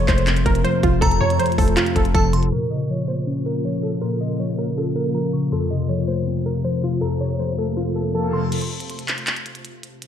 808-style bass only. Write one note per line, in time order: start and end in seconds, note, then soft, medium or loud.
0.08 0.44 F1 loud
0.46 0.64 F1 loud
0.83 1.01 F1 loud
1.02 1.20 F1 loud
1.21 1.39 F2 loud
1.58 1.76 F1 loud
1.96 2.14 F1 loud
2.15 2.51 F1 loud